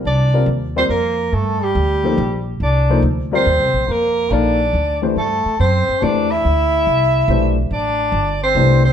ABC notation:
X:1
M:3/4
L:1/8
Q:"Swing" 1/4=141
K:Dphr
V:1 name="Soprano saxophone"
d2 z c B2 | A G4 z | d2 z c3 | B2 d3 z |
A2 c2 d =e- | =e4- e z | d3 c2 c |]
V:2 name="Upright piano"
z [G,CFBd] z [G,CFBd] z2 | z3 [F,B,EAc] z2 | z [F,B,EAc] z [G,CFBd] z2 | z2 [B,EAdf] z2 [=E,A,DGc] |
z4 [=E,A,DGc] z | z4 [=E,A,DGc] z | z4 [=E,A,DGc] z |]
V:3 name="Trombone"
D2 z C B,2 | A, G,4 z | D2 z C3 | B,2 D3 z |
A,2 C2 D =E- | =E4- E z | D3 C2 C |]
V:4 name="Upright bass" clef=bass
C,,2 E,,2 F,,2 | G,,2 D,,2 B,,,2 | C,,2 D,,2 (3E,, C,, B,,, | F,,2 B,,,2 D,,2 |
G,, z ^F,, z =E,,2 | D,,2 C,,2 =B,,,2 | A,,,2 G,,,2 C,,2 |]